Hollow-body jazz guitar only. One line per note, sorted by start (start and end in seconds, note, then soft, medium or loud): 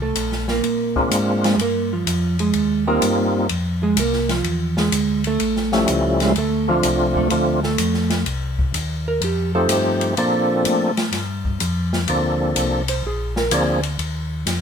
0.02 0.46 A3 medium
0.02 0.45 A4 medium
0.50 1.08 A#3 medium
0.50 1.08 A#4 medium
1.45 1.59 G#3 medium
1.45 1.59 G#4 medium
1.61 1.91 A#3 medium
1.61 1.91 A#4 medium
1.93 2.37 F3 medium
1.93 2.36 F4 medium
2.40 2.84 G#3 medium
2.40 2.84 G#4 medium
2.88 3.46 A#3 medium
2.88 3.46 A#4 loud
3.83 3.98 G#3 medium
3.83 3.97 G#4 medium
4.00 4.30 A#3 medium
4.00 4.30 A#4 medium
4.30 4.74 F3 soft
4.30 4.74 F4 medium
4.79 5.22 G#3 medium
4.79 5.22 G#4 medium
5.27 5.85 A3 medium
5.27 5.85 A4 loud
6.22 6.36 G#3 medium
6.22 6.36 G#4 medium
6.38 6.69 A3 medium
6.38 6.68 A4 medium
6.70 7.13 F3 medium
6.70 7.13 F4 medium
7.17 7.61 A3 medium
7.17 7.61 A4 medium
7.65 8.23 A3 medium
7.65 8.23 A4 medium
9.08 9.22 A#4 medium
9.24 9.54 G4 medium
9.55 9.70 A4 medium
9.72 10.02 C5 medium
12.89 13.04 C5 loud
13.07 13.37 G#4 medium
13.38 13.52 A#4 loud
13.54 13.84 D5 medium